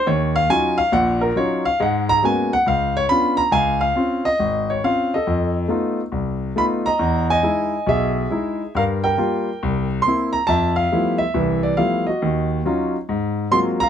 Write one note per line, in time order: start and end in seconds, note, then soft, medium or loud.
0.07 0.44 D#2 medium
0.07 0.34 C#5 medium
0.36 0.49 F5 loud
0.50 0.79 F#3 medium
0.50 0.80 C#4 medium
0.50 0.79 D#4 medium
0.50 0.80 F4 medium
0.50 0.77 G#5 loud
0.78 0.92 F5 loud
0.92 1.30 A#1 medium
0.92 1.30 A#2 medium
0.92 1.20 F#5 loud
1.21 1.35 A#4 medium
1.36 1.66 F#3 medium
1.36 1.66 C#4 medium
1.36 1.66 D#4 soft
1.36 1.66 F4 medium
1.36 1.64 C#5 medium
1.65 1.79 F5 loud
1.80 2.17 G#2 medium
1.80 2.17 G#3 medium
1.80 2.09 F#5 medium
2.09 2.23 A#5 loud
2.23 2.53 G#3 medium
2.23 2.53 A#3 soft
2.23 2.53 B3 medium
2.23 2.53 C#4 soft
2.23 2.53 F#4 medium
2.23 2.52 G#5 medium
2.53 2.66 F#5 loud
2.66 3.04 C#2 medium
2.66 2.95 F5 medium
2.97 3.05 C#5 loud
3.09 3.40 B3 medium
3.09 3.40 C#4 soft
3.09 3.40 D4 soft
3.09 3.40 F4 medium
3.09 3.39 B5 loud
3.37 3.53 A#5 loud
3.52 3.90 C#2 medium
3.52 3.79 F5 medium
3.52 3.82 G#5 loud
3.81 4.26 F5 medium
3.95 4.26 C4 medium
3.95 4.26 C#4 soft
3.95 4.26 F4 medium
4.25 4.70 D#5 loud
4.39 4.77 G#1 medium
4.70 4.84 C#5 medium
4.84 5.14 C4 medium
4.84 5.14 C#4 soft
4.84 5.14 F4 medium
4.84 5.13 F5 medium
5.14 5.97 A4 medium
5.14 5.54 D#5 medium
5.27 5.65 F2 medium
5.68 5.99 A3 medium
5.68 6.00 B3 soft
5.68 6.00 D#4 soft
5.68 6.00 F4 medium
6.12 6.50 C2 medium
6.56 6.87 A3 medium
6.56 6.87 B3 soft
6.56 6.87 D#4 soft
6.56 6.87 F4 medium
6.56 6.64 B5 loud
6.86 7.30 D#5 medium
6.86 7.26 A#5 loud
6.99 7.37 E2 medium
7.30 8.13 D#5 medium
7.30 7.89 G#5 medium
7.43 7.74 G#3 medium
7.43 7.74 D#4 soft
7.43 7.74 E4 medium
7.87 8.24 B1 medium
7.87 8.71 G#4 medium
7.87 8.77 E5 medium
8.30 8.61 G#3 medium
8.30 8.61 D#4 soft
8.30 8.61 E4 medium
8.75 9.12 G2 medium
8.75 9.03 A#4 medium
8.75 8.83 F5 medium
9.04 9.86 A#4 medium
9.04 9.86 G5 medium
9.18 9.48 G3 medium
9.18 9.48 A#3 soft
9.18 9.48 F4 medium
9.63 9.99 C2 medium
10.02 10.30 C6 loud
10.07 10.35 A#3 soft
10.07 10.36 C4 soft
10.07 10.36 E4 medium
10.33 10.48 A#5 medium
10.47 10.85 F2 medium
10.47 11.17 E5 medium
10.47 10.74 A5 loud
10.76 11.16 F5 medium
10.92 11.22 F3 medium
10.92 11.22 G3 soft
10.92 11.22 A3 soft
10.92 11.22 B3 medium
10.92 11.22 E4 medium
11.18 11.64 E5 medium
11.34 11.72 C2 medium
11.34 11.72 E3 medium
11.63 11.78 D5 medium
11.77 12.08 F3 medium
11.77 12.08 G3 soft
11.77 12.08 A3 soft
11.77 12.08 B3 soft
11.77 12.08 E4 medium
11.77 12.04 F5 medium
12.07 12.90 F#4 soft
12.07 12.47 D#5 medium
12.22 12.59 D#2 medium
12.65 12.95 F#3 medium
12.65 12.95 C#4 medium
12.65 12.95 D#4 soft
12.65 12.95 F4 medium
13.09 13.46 G#2 medium
13.51 13.81 F#3 medium
13.51 13.81 G#3 soft
13.51 13.81 A#3 soft
13.51 13.81 C4 soft
13.51 13.82 F4 medium
13.51 13.58 C6 loud
13.80 13.89 F5 medium
13.80 13.89 A#5 loud